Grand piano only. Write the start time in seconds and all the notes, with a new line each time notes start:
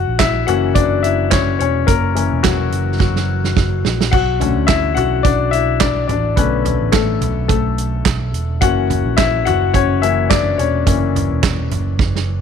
Already playing: F#4 F#5
0.19 E4 E5
0.47 E3 A#3 C#4 F#4 F#5
0.75 D4 D5
1.03 E4 E5
1.30 C#4 C#5
1.59 C#4 C#5
1.87 A#3 A#4
2.15 E3 A#3 C#4
2.43 F#3 F#4
3.00 F#3 F#4
4.11 F#4 F#5
4.40 D3 A3 C#4
4.67 E4 E5
4.95 F#4 F#5
5.23 D4 D5
5.51 E4 E5
5.80 D4 D5
6.08 D4 D5
6.36 D3 A3 B3 C#4 B4
6.92 A3 A4
7.48 A3 A4
8.61 E3 A#3 C#4 F#4 F#5
9.17 E4 E5
9.45 F#4 F#5
9.74 C#4 C#5
10.02 E3 A#3 C#4 E4 E5
10.30 D4 D5
10.58 C#4 C#5
10.86 E3 A#3 C#4